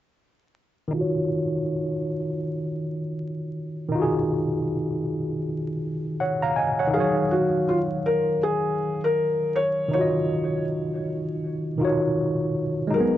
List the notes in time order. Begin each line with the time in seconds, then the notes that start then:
0.88 D#3 D#4
0.94 F4 F#4
1.01 C#5
3.89 D#3 D#4
3.95 F4 F#4
4.02 G#4
6.20 C#5 F#5
6.42 F5 A#5
6.56 D#5 G#5
6.79 C#5 F#5
6.87 D#3 D#4
6.94 F#3 G#4 F5
7.00 C#5
7.31 F#4
7.69 F4
8.06 A#4
8.43 G#4
9.04 A#4
9.56 C#5
9.88 D#3 D#4
9.93 F4 C#5
9.98 F#4 D#5
11.78 D#3 D#4 F4
11.83 F#4 C#5
12.87 G#3 D#4
12.94 F#3 G#4 A#4
13.00 B3